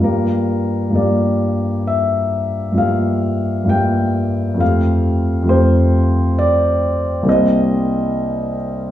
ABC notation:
X:1
M:5/4
L:1/8
Q:1/4=67
K:Gm
V:1 name="Grand piano"
B2 d2 =e2 f2 g2 | f2 c2 d2 e3 z |]
V:2 name="Grand piano" clef=bass
[G,,F,G,B,G]2 [G,,F,G,B,G]4 [G,,F,G,B,G]2 [G,,F,G,B,G]2 | [F,,F,A,CG]2 [F,,F,A,CG]4 [C,,G,B,Cc]4 |]